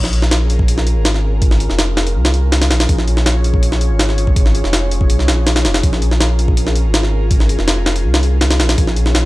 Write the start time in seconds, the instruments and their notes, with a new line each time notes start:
Already playing: sub bass A#1, analog synth pad C#4 F4 G#4 A#4
0.04 snare
0.13 open hi-hat
0.22 snare
0.31 snare, open hi-hat
0.50 open hi-hat
0.59 kick
0.68 open hi-hat
0.78 snare
0.87 open hi-hat
0.96 sub bass G#1
1.05 snare, open hi-hat
1.14 snare
1.42 kick, open hi-hat
1.51 snare
1.60 open hi-hat
1.70 sub bass F1, snare
1.79 snare, open hi-hat
1.97 snare
2.07 open hi-hat
2.15 sub bass C2
2.25 snare
2.34 open hi-hat
2.52 snare, open hi-hat
2.62 snare, open hi-hat
2.71 sub bass A#1, snare, open hi-hat
2.80 snare, open hi-hat
2.89 sub bass A#1, analog synth pad C#5, kick, open hi-hat
2.98 snare
3.08 open hi-hat
3.17 snare
3.26 snare, open hi-hat
3.44 open hi-hat
3.54 kick
3.63 open hi-hat
3.72 snare
3.81 open hi-hat
3.90 sub bass G#1
3.99 snare, open hi-hat
4.09 snare
4.18 open hi-hat
4.27 kick
4.36 kick, open hi-hat
4.46 snare
4.55 open hi-hat
4.64 sub bass F1, snare
4.73 snare, open hi-hat
4.91 open hi-hat
5.01 kick
5.10 sub bass C2, open hi-hat
5.19 snare
5.28 sub bass A#1, snare, open hi-hat
5.47 snare, open hi-hat
5.56 snare, open hi-hat
5.65 sub bass F1, snare, open hi-hat
5.74 snare, open hi-hat
5.83 sub bass A#1, analog synth pad A#4, kick, open hi-hat
5.93 snare
6.02 open hi-hat
6.11 snare
6.21 snare, open hi-hat
6.39 open hi-hat
6.48 kick
6.57 open hi-hat
6.67 snare
6.75 open hi-hat
6.85 sub bass G#1
6.94 snare, open hi-hat
7.03 snare
7.31 kick, open hi-hat
7.40 snare
7.49 open hi-hat
7.58 sub bass F1, snare
7.68 snare, open hi-hat
7.86 snare
7.96 open hi-hat
8.04 sub bass C2
8.14 snare
8.23 open hi-hat
8.41 snare, open hi-hat
8.51 snare, open hi-hat
8.60 sub bass A#1, snare, open hi-hat
8.69 snare, open hi-hat
8.78 sub bass A#1, analog synth pad C#5, kick, open hi-hat
8.87 snare
8.96 open hi-hat
9.06 snare
9.15 snare, open hi-hat